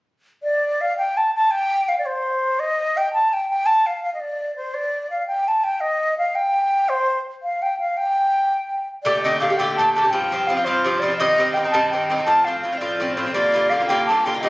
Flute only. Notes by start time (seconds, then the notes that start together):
0.43 D5
0.81 F5
0.98 G5
1.17 A5
1.34 A5
1.51 G5
1.89 F5
1.99 D5
2.06 C5
2.60 D#5
2.97 G5
3.14 A5
3.33 G5
3.49 G5
3.66 A5
3.86 F5
4.03 F5
4.14 D#5
4.20 D5
4.56 C5
4.74 D5
5.11 F5
5.28 G5
5.48 A5
5.64 G5
5.81 D#5
6.18 F5
6.35 G5
6.89 C5
7.43 F5
7.62 G5
7.80 F5
7.97 G5
9.04 D5
9.22 D#5
9.40 F5
9.57 G5
9.76 A5
9.94 A5
10.11 G5
10.47 F5
10.64 C5
11.00 D5
11.17 D#5
11.54 G5
11.70 A5
11.90 G5
12.07 G5
12.25 A5
12.45 F5
12.61 F5
12.78 D5
13.14 C5
13.32 D5
13.70 F5
13.87 G5
14.06 A5
14.25 G5
14.41 D#5